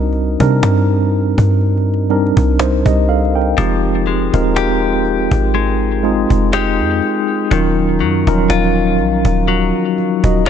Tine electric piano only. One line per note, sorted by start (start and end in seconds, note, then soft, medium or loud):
0.00 0.22 G3 medium
0.00 0.23 C4 medium
0.00 0.23 D4 medium
0.00 0.23 D#4 medium
0.00 3.60 F#4 medium
0.00 0.27 A#4 loud
0.00 2.86 D#5 medium
0.39 1.89 G3 medium
0.39 1.90 C4 medium
0.39 1.90 D4 medium
0.39 1.90 D#4 medium
0.39 1.90 A#4 loud
2.10 3.40 G3 medium
2.10 3.40 C4 medium
2.10 2.60 D4 medium
2.10 2.59 D#4 medium
2.10 2.60 A#4 medium
2.60 2.85 D#4 medium
2.60 2.85 C5 medium
2.86 3.08 G4 medium
2.86 3.08 D#5 medium
3.09 3.34 A4 medium
3.09 3.34 F5 medium
3.35 3.82 A#4 medium
3.35 3.82 G5 medium
3.57 4.23 G#3 medium
3.57 4.23 C4 medium
3.57 4.23 D#4 medium
3.57 4.23 F4 medium
3.57 4.24 G4 medium
4.33 5.83 G#3 medium
4.33 5.83 C4 medium
4.33 5.83 D#4 medium
4.33 5.83 F4 medium
4.33 5.84 A#4 medium
6.03 7.33 G#3 medium
6.03 7.34 C4 medium
6.03 7.34 D#4 medium
6.03 7.34 F4 medium
6.03 7.34 G#4 medium
7.51 8.16 F#3 medium
7.51 8.17 C#4 medium
7.51 8.17 D#4 medium
7.51 8.17 F4 medium
7.51 8.17 A#4 medium
8.27 8.33 F3 medium
8.27 9.77 C#4 medium
8.27 9.77 D#4 medium
8.27 9.77 F4 medium
8.27 9.77 A#4 loud
8.33 9.80 F#3 medium
10.24 10.46 F#4 medium
10.24 10.45 D#5 medium
10.46 10.50 C5 medium